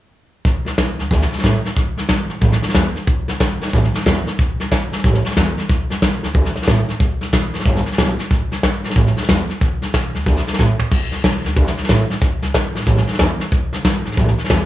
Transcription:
0.45 upright bass D2, kick, snare
0.65 upright bass F#2, snare
0.78 upright bass B1, kick, snare, hi-hat pedal
0.98 upright bass D2, snare
1.11 upright bass D2, kick, snare
1.21 snare
1.32 muted upright bass stroke, snare
1.38 snare
1.43 upright bass A2, kick, snare, hi-hat pedal
1.64 muted upright bass stroke, snare
1.76 upright bass A1, kick, snare
1.97 upright bass C#2, snare
2.09 upright bass G1, kick, snare, hi-hat pedal
2.29 upright bass A1, snare
2.41 upright bass A1, kick, snare
2.52 snare
2.62 muted upright bass stroke, snare
2.69 snare
2.75 upright bass E2, kick, snare, hi-hat pedal
2.95 muted upright bass stroke, snare
3.07 upright bass A1, kick, snare
3.28 upright bass C#2, snare
3.40 upright bass G1, kick, snare, hi-hat pedal
3.60 upright bass A1, snare
3.68 snare
3.73 upright bass A1, kick, snare
3.84 snare
3.94 muted upright bass stroke, snare
4.00 snare
4.06 upright bass E2, kick, snare, hi-hat pedal
4.27 muted upright bass stroke, snare
4.39 upright bass A1, kick, snare
4.60 upright bass C#2, snare
4.71 upright bass G1, kick, snare, hi-hat pedal
4.92 upright bass A1, snare
4.98 snare
5.04 upright bass A1, kick, snare
5.14 snare
5.25 muted upright bass stroke, snare
5.31 snare
5.36 upright bass E2, kick, snare, hi-hat pedal
5.58 muted upright bass stroke, snare
5.69 upright bass D2, kick, snare
5.90 upright bass F#2, snare
6.02 upright bass B1, kick, snare, hi-hat pedal
6.22 upright bass D2, snare
6.34 upright bass D2, kick, snare
6.45 snare
6.55 muted upright bass stroke, snare
6.62 snare
6.67 upright bass A2, kick, snare, hi-hat pedal
6.88 muted upright bass stroke, snare
7.00 upright bass G1, kick, snare
7.21 upright bass B1, snare
7.33 upright bass E1, kick, snare, hi-hat pedal
7.53 upright bass G1, snare
7.60 snare
7.65 upright bass G1, kick, snare
7.76 snare
7.86 muted upright bass stroke, snare
7.92 snare
7.98 upright bass B1, kick, snare, hi-hat pedal
8.19 muted upright bass stroke, snare
8.31 upright bass A1, kick, snare
8.51 upright bass C#2, snare
8.63 upright bass G1, kick, snare, hi-hat pedal
8.83 upright bass A1, snare
8.90 snare
8.96 upright bass A1, kick, snare
9.07 snare
9.16 muted upright bass stroke, snare
9.23 snare
9.29 upright bass E2, kick, snare, hi-hat pedal
9.49 muted upright bass stroke, snare
9.61 upright bass D2, kick, snare
9.82 upright bass F#2, snare
9.94 upright bass B1, kick, snare, hi-hat pedal
10.14 upright bass D2, snare
10.26 upright bass D2, kick, snare
10.37 snare
10.47 muted upright bass stroke, snare
10.53 snare
10.59 upright bass A2, kick, snare, hi-hat pedal
10.79 muted upright bass stroke, floor tom
10.91 upright bass D2, kick, snare, crash
11.11 upright bass F#2, snare
11.24 upright bass B1, kick, snare, hi-hat pedal
11.44 upright bass D2, snare
11.56 upright bass D2, kick, snare
11.67 snare
11.77 muted upright bass stroke, snare
11.83 snare
11.89 upright bass A2, kick, snare, hi-hat pedal
12.10 muted upright bass stroke, snare
12.21 upright bass A1, kick, snare
12.42 upright bass C#2, snare
12.54 upright bass G1, kick, snare, hi-hat pedal
12.74 upright bass A1, snare
12.81 snare
12.86 upright bass A1, kick, snare
12.97 snare
13.06 muted upright bass stroke, snare
13.13 snare
13.19 upright bass E2, kick, snare, hi-hat pedal
13.39 muted upright bass stroke, snare
13.52 upright bass A1, kick, snare
13.73 upright bass C#2, snare
13.85 upright bass G1, kick, snare, hi-hat pedal
14.05 upright bass A1, snare
14.12 snare
14.17 upright bass A1, kick, snare
14.28 snare
14.38 muted upright bass stroke, snare
14.44 snare
14.50 upright bass E2, kick, snare, hi-hat pedal

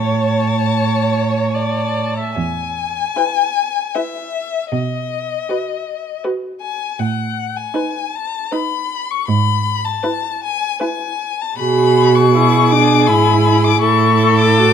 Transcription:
Already playing: cello A2, viola C#5, violin C#5 A5
0.69 viola C#5
1.52 viola D5, violin A5
2.18 viola E5
2.36 cello E2, violin G#5
3.16 viola E4, violin B4
3.95 viola E4, violin B4 E5
4.72 cello B2, violin D#5
5.49 viola F#4, violin B4
6.24 viola F#4, violin B4
6.61 violin G#5
6.99 cello A2, violin F#5
7.57 violin G#5
7.74 viola D#4, violin B4
8.15 violin A5
8.52 viola D#4, violin B4 B5
9.11 violin C#6
9.27 cello G#2, violin B5
9.84 violin A5
10.03 viola E4, violin B4
10.44 violin G#5
10.80 viola E4, violin B4 G#5
11.41 violin A5
11.58 cello B2, viola F#4, violin G#4 B5
12.15 violin C#6
12.34 viola E4, violin G#4
12.71 viola D4, violin D6
13.07 cello G#2, viola E4, violin B5
13.64 violin D6
13.81 cello A2, viola E4, violin A4 C#6
14.39 violin D6
14.57 viola F#4

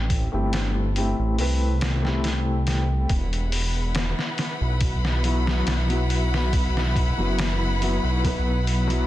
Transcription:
Already playing: detuned saw bass A1, felt piano A3 C4 E4 G4
0.10 kick, open hi-hat
0.32 detuned saw bass G1, felt piano A3 C4 E4 G4
0.53 snare, open hi-hat
0.96 felt piano A3 C4 E4 G4, open hi-hat
1.19 detuned saw bass A1
1.38 detuned saw bass C2, felt piano A3 C4 E4 B4, open hi-hat
1.81 snare, open hi-hat
2.02 felt piano A3 C4 E4, snare
2.07 felt piano G4
2.24 snare, open hi-hat
2.67 snare, open hi-hat
3.09 detuned saw bass E1, violin section E4 B4 F#5 B5, kick, open hi-hat
3.33 closed hi-hat
3.52 open hi-hat
3.95 snare, open hi-hat
4.19 snare
4.38 snare, open hi-hat
4.61 detuned saw bass B1
4.81 kick, open hi-hat
5.05 snare
5.23 felt piano F#3 B3 E4 F#4, open hi-hat
5.46 felt piano F#3 B3 E4 F#4, snare
5.67 detuned saw bass B1, snare, open hi-hat
5.87 felt piano F#3 B3 E4, closed hi-hat
5.92 felt piano F#4
6.10 open hi-hat
6.34 snare
6.53 kick, open hi-hat
6.77 snare
6.96 kick, open hi-hat
7.18 detuned saw bass F#1, felt piano F#3 B3 E4 F#4
7.39 snare, open hi-hat
7.81 felt piano F#3 B3 E4 F#4, open hi-hat
8.04 detuned saw bass B1
8.23 felt piano F#3 B3 E4 B4, kick, open hi-hat
8.67 open hi-hat
8.87 felt piano F#3 B3 E4, closed hi-hat
8.92 felt piano F#4

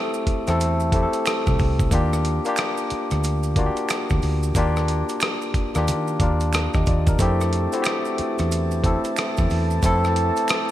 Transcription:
Already playing: tine electric piano A3 C4 E4 F#4 G4 A4
0.14 maracas
0.27 muted fingered electric bass stroke, kick, closed hi-hat
0.47 fingered electric bass E2, tine electric piano A3 C4 E4 A4, cross-stick, closed hi-hat, maracas
0.60 closed hi-hat, maracas
0.80 maracas
0.92 tine electric piano A3 C4 E4 G4, kick, closed hi-hat
1.03 tine electric piano A4
1.13 closed hi-hat, maracas
1.26 finger snap, cross-stick, closed hi-hat, maracas
1.46 fingered electric bass C2, kick, cross-stick, maracas
1.59 fingered electric bass C2, kick, open hi-hat, maracas
1.79 kick, maracas
1.91 fingered electric bass D#2, tine electric piano A#3 D4 F4 G4, kick, closed hi-hat, maracas
2.13 cross-stick, maracas
2.25 closed hi-hat
2.45 tine electric piano A#3 D4 F4 G4, closed hi-hat, maracas
2.56 finger snap, cross-stick, closed hi-hat, maracas
2.77 maracas
2.90 muted fingered electric bass stroke, closed hi-hat
3.11 fingered electric bass D2, cross-stick, closed hi-hat, maracas
3.23 closed hi-hat, maracas
3.43 maracas
3.56 tine electric piano A#3 D4 F4 F#4, kick, closed hi-hat
3.66 tine electric piano G4
3.76 closed hi-hat, maracas
3.89 finger snap, cross-stick, closed hi-hat, maracas
4.09 fingered electric bass D2, kick, cross-stick, maracas
4.22 fingered electric bass D2, open hi-hat, maracas
4.43 maracas
4.55 fingered electric bass D#2, tine electric piano A#3 D4 F4, kick, closed hi-hat, maracas
4.59 tine electric piano G4
4.76 cross-stick, maracas
4.88 closed hi-hat
5.09 closed hi-hat, maracas
5.20 finger snap, cross-stick, closed hi-hat, maracas
5.42 maracas
5.54 muted fingered electric bass stroke, kick, closed hi-hat
5.75 fingered electric bass D#2, tine electric piano A#3 D4 F4 G4, cross-stick, closed hi-hat, maracas
5.88 fingered electric bass D#3, closed hi-hat, maracas
6.07 maracas
6.20 fingered electric bass D#2, tine electric piano A#3 D4 F4 A#4, kick, closed hi-hat
6.40 closed hi-hat, maracas
6.53 finger snap, cross-stick, closed hi-hat, maracas
6.73 fingered electric bass D#2, tine electric piano G4 D#5, kick, cross-stick, maracas
6.86 fingered electric bass D#2, tine electric piano F4 D5, kick, closed hi-hat, maracas
7.07 tine electric piano D4 A#4, kick, closed hi-hat, maracas
7.19 fingered electric bass F2, woodwind section E3 E4 G4 A5, tine electric piano A3 C4 E4 G4, kick, closed hi-hat, maracas
7.41 cross-stick, maracas
7.53 closed hi-hat
7.72 tine electric piano A3 C4 E4 F#4, closed hi-hat, maracas
7.82 tine electric piano G4, finger snap, closed hi-hat, maracas
7.87 cross-stick
8.05 maracas
8.18 muted fingered electric bass stroke, closed hi-hat
8.38 fingered electric bass E2, cross-stick, closed hi-hat, maracas
8.51 closed hi-hat, maracas
8.71 maracas
8.84 tine electric piano A3 C4 E4 A4, kick, closed hi-hat
9.04 closed hi-hat, maracas
9.16 finger snap, cross-stick, closed hi-hat, maracas
9.37 fingered electric bass E2, kick, cross-stick, maracas
9.50 fingered electric bass E2, open hi-hat, maracas
9.70 maracas
9.82 fingered electric bass F2, tine electric piano A3 C4 E4 A4, kick, closed hi-hat, maracas
10.04 cross-stick, maracas
10.16 closed hi-hat
10.36 closed hi-hat, maracas
10.48 finger snap, cross-stick, closed hi-hat, maracas

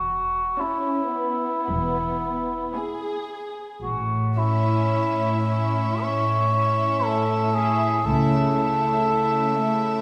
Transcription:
Already playing: double bass section E1, cello section E2, cor anglais F#4
0.60 violin section C#4 A5, viola section C#4, cor anglais E4
1.14 violin section B3
1.69 double bass section E1, cello section E2
2.75 viola section B3, violin section G#4 G#5
3.83 double bass section A1, cello section A2, cor anglais F#4
4.37 viola section C#4, cor anglais E4, violin section E4 E5
4.92 cello section A2
5.46 viola section C#4, violin section E4 E5
6.02 cello section A2, cor anglais C#5
6.54 viola section C#4, violin section E4 E5
7.05 cello section A2, cor anglais A4
7.54 viola section C#4, violin section E4 E5, cor anglais G#4
8.05 double bass section C#2, cello section C#3, viola section A3, violin section E4 E5, cor anglais A4
8.57 viola section A3, violin section E4 E5
9.09 cello section C#3
9.60 viola section A3, violin section E4 E5

